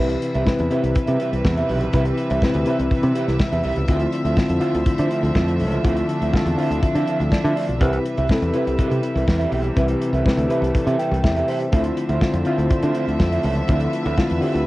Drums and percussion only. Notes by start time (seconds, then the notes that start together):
0.09 closed hi-hat
0.22 closed hi-hat
0.34 closed hi-hat
0.46 kick, snare
0.58 closed hi-hat
0.71 closed hi-hat
0.84 closed hi-hat
0.95 kick, closed hi-hat
1.07 closed hi-hat
1.20 closed hi-hat
1.33 closed hi-hat
1.45 kick, snare
1.57 closed hi-hat
1.69 open hi-hat
1.81 closed hi-hat
1.93 kick, closed hi-hat
2.05 closed hi-hat
2.18 closed hi-hat
2.30 closed hi-hat
2.42 kick, snare
2.54 closed hi-hat
2.66 closed hi-hat
2.80 closed hi-hat
2.91 kick, closed hi-hat
3.03 closed hi-hat
3.16 closed hi-hat
3.28 snare, closed hi-hat
3.40 kick, snare
3.52 closed hi-hat
3.64 open hi-hat
3.76 closed hi-hat
3.88 kick, closed hi-hat
4.00 closed hi-hat
4.13 closed hi-hat
4.25 closed hi-hat
4.37 kick, snare
4.49 closed hi-hat
4.61 closed hi-hat
4.75 closed hi-hat
4.86 kick, closed hi-hat
4.98 closed hi-hat
5.11 closed hi-hat
5.25 closed hi-hat
5.35 kick, snare
5.48 closed hi-hat
5.60 open hi-hat
5.72 closed hi-hat
5.85 kick, closed hi-hat
5.97 closed hi-hat
6.09 closed hi-hat
6.22 closed hi-hat
6.33 kick, snare
6.46 closed hi-hat
6.58 open hi-hat
6.71 closed hi-hat
6.83 kick, closed hi-hat
6.95 closed hi-hat
7.07 closed hi-hat
7.21 closed hi-hat
7.32 kick, snare
7.45 closed hi-hat
7.57 open hi-hat
7.69 closed hi-hat
7.81 kick, closed hi-hat
7.93 closed hi-hat
8.05 closed hi-hat
8.17 closed hi-hat
8.29 kick, snare
8.42 closed hi-hat
8.54 closed hi-hat
8.67 closed hi-hat
8.79 kick, closed hi-hat
8.92 closed hi-hat
9.03 closed hi-hat
9.17 closed hi-hat
9.28 kick, snare
9.41 closed hi-hat
9.52 open hi-hat
9.64 closed hi-hat
9.76 kick, closed hi-hat
9.88 closed hi-hat
10.02 closed hi-hat
10.14 closed hi-hat
10.26 kick, snare
10.38 closed hi-hat
10.50 closed hi-hat
10.64 closed hi-hat
10.75 kick, closed hi-hat
10.87 closed hi-hat
10.99 closed hi-hat
11.14 closed hi-hat
11.24 kick, snare
11.36 closed hi-hat
11.48 open hi-hat
11.60 closed hi-hat
11.72 kick, closed hi-hat
11.84 closed hi-hat
11.97 closed hi-hat
12.09 closed hi-hat
12.21 kick, snare
12.34 closed hi-hat
12.45 closed hi-hat
12.59 closed hi-hat
12.70 kick, closed hi-hat
12.83 closed hi-hat
12.95 closed hi-hat
13.08 closed hi-hat
13.20 kick, snare
13.32 closed hi-hat
13.43 open hi-hat
13.55 closed hi-hat
13.67 kick, closed hi-hat
13.79 closed hi-hat
13.93 closed hi-hat
14.05 closed hi-hat
14.17 kick, snare
14.29 closed hi-hat
14.42 open hi-hat
14.56 closed hi-hat